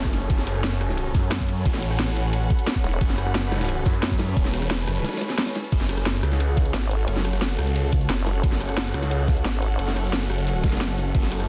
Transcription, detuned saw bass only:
0.00 0.28 F#1 medium
0.30 1.13 F#1 loud
1.15 1.64 F#2 medium
1.65 2.49 A1 loud
3.01 3.84 F#1 loud
3.86 4.35 F#2 loud
4.37 4.86 E1 loud
4.87 5.04 F#1 loud
5.72 6.22 F#1 medium
6.23 6.73 C#2 loud
7.08 7.57 F#1 medium
7.59 8.08 C#2 medium
8.43 8.93 F#1 loud
8.94 9.44 C#2 medium
9.79 10.28 F#1 loud
10.30 10.62 F#1 medium
10.64 11.13 F#1 loud
11.15 11.48 F#1 loud

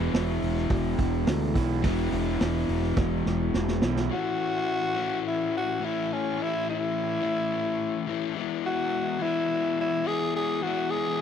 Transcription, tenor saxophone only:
4.13 5.22 F#4 loud
5.27 5.52 E4 medium
5.57 5.87 F#4 loud
5.85 6.14 E4 medium
6.13 6.44 C#4 medium
6.42 6.69 E4 loud
6.70 8.34 E4 medium
8.66 9.24 F#4 loud
9.22 9.79 E4 loud
9.81 10.09 E4 loud
10.07 10.35 G#4 loud
10.36 10.64 G#4 medium
10.62 10.92 F#4 medium
10.90 11.21 G#4 loud

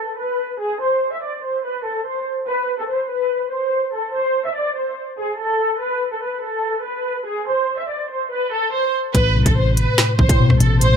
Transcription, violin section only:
0.00 0.16 A4 medium
0.18 0.58 B4 medium
0.60 0.79 G#4 medium
0.81 1.11 C5 loud
1.12 1.22 E5 medium
1.23 1.42 D5 medium
1.44 1.63 C5 medium
1.65 1.84 B4 medium
1.86 2.04 A4 medium
2.06 2.25 C5 medium
2.48 2.77 B4 loud
2.79 2.89 A4 medium
2.89 3.08 C5 medium
3.10 3.49 B4 medium
3.52 3.91 C5 medium
3.94 4.13 A4 medium
4.15 4.44 C5 loud
4.46 4.55 E5 medium
4.57 4.75 D5 medium
4.77 4.96 C5 medium
5.18 5.37 G#4 medium
5.40 5.79 A4 loud
5.81 6.11 B4 loud
6.13 6.22 A4 medium
6.23 6.42 B4 medium
6.44 6.83 A4 medium
6.85 7.24 B4 medium
7.27 7.46 G#4 medium
7.48 7.77 C5 loud
7.79 7.89 E5 medium
7.90 8.08 D5 medium
8.11 8.29 C5 medium
8.32 8.50 B4 medium
8.52 8.71 A4 medium
8.73 8.92 C5 medium
9.14 9.44 B4 loud
9.46 9.55 A4 medium
9.56 9.75 C5 medium
9.77 10.16 B4 medium
10.18 10.58 C5 medium
10.61 10.79 A4 medium
10.81 10.97 C5 loud

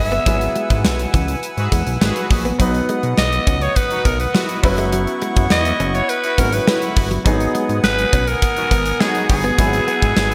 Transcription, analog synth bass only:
0.00 0.19 G1 medium
0.26 0.48 G#1 loud
0.70 0.86 G#2 loud
0.84 1.07 B1 medium
1.14 1.36 C#2 medium
1.57 1.69 G#2 medium
1.72 1.83 E2 medium
1.87 1.98 B1 medium
2.01 2.12 G#1 medium
2.31 2.52 A#1 medium
2.60 2.82 B1 loud
3.03 3.14 B2 medium
3.18 3.40 B1 medium
3.47 3.69 C#2 medium
4.05 4.27 B1 loud
4.63 5.07 F#1 medium
5.36 5.47 F#2 medium
5.51 5.73 E2 loud
5.80 6.02 F#1 medium
6.38 6.60 G#1 loud
6.97 7.18 G1 medium
7.26 7.48 G#1 loud
7.69 7.80 G#2 loud
7.84 8.06 G#1 medium
8.13 8.35 B1 medium
8.71 8.93 G#1 loud
9.29 9.51 G1 medium
9.59 9.80 G#1 loud
10.02 10.13 G#2 loud
10.17 10.34 G#1 loud

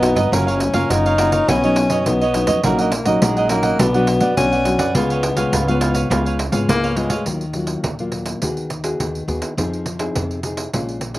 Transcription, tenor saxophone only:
0.00 0.34 B3 loud
0.32 0.92 C#4 medium
0.90 1.50 D#4 loud
1.48 1.99 C#4 loud
1.99 2.08 C#4 medium
2.06 2.63 B3 loud
2.63 3.23 A#3 medium
3.22 3.51 G#3 medium
3.49 3.80 A#3 medium
3.79 4.36 B3 loud
4.37 4.97 C#4 medium
4.95 6.41 B3 medium
6.69 6.98 A#3 loud
6.97 7.26 G#3 medium

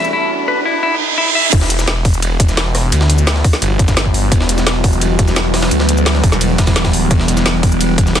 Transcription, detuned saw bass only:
0.00 0.13 E1 loud
1.53 2.38 E1 medium
2.40 2.91 E1 loud
2.92 3.43 D2 loud
3.62 4.30 G1 loud
4.32 5.18 E1 medium
5.19 5.70 E1 loud
5.71 6.22 D2 loud
6.24 6.85 E1 loud
6.85 7.09 D#1 loud
7.11 7.97 E1 medium
7.98 8.20 E1 loud

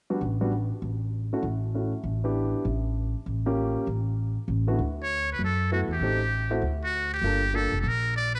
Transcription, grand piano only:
0.10 0.20 G3 medium
0.10 0.20 B3 medium
0.10 0.20 D4 medium
0.10 0.20 F#4 medium
0.41 0.51 G3 medium
0.41 0.51 B3 medium
0.41 0.51 D4 medium
0.41 0.51 F#4 medium
1.33 1.43 A3 medium
1.33 1.43 C#4 soft
1.33 1.43 E4 medium
1.33 1.43 F#4 medium
1.74 1.91 A3 soft
1.74 1.91 C#4 soft
1.74 1.91 E4 soft
1.74 1.92 F#4 soft
2.24 2.63 B3 medium
2.24 2.63 D4 medium
2.24 2.64 E4 medium
2.24 2.64 G4 medium
3.46 3.85 A#3 medium
3.46 3.86 C#4 medium
3.46 3.86 F4 medium
3.46 3.86 G4 medium
4.67 4.78 D3 medium
4.67 4.78 A3 medium
4.67 4.78 B3 medium
4.67 4.78 E4 medium
4.67 4.78 F#4 medium
5.71 5.88 A3 medium
5.71 5.88 B3 medium
5.71 5.88 E4 soft
5.71 5.88 F#4 medium
6.02 6.19 A3 medium
6.02 6.19 C4 soft
6.02 6.19 D#4 soft
6.02 6.19 G4 medium
6.50 6.61 A3 medium
6.50 6.61 C4 medium
6.50 6.61 E4 medium
6.50 6.61 F#4 medium
7.24 7.40 A#3 soft
7.24 7.40 D4 soft
7.24 7.40 F4 soft
7.24 7.40 A4 medium
7.53 7.70 A#3 soft
7.53 7.71 D4 soft
7.53 7.70 F4 soft
7.53 7.71 A4 medium

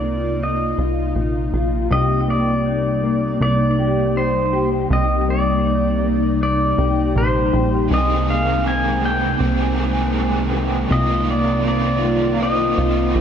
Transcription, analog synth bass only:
0.00 0.74 C2 loud
0.78 1.14 C2 medium
1.16 1.51 A#1 medium
1.53 1.89 A#1 medium
1.91 3.37 C2 loud
3.41 4.87 C2 loud
4.90 6.74 C2 loud
6.78 7.14 C2 loud
7.16 7.51 A#1 loud
7.53 7.89 A#1 loud
7.91 9.37 C2 loud
9.40 10.87 C2 loud
10.91 12.74 C2 loud
12.78 13.14 C2 medium
13.15 13.21 A#1 medium

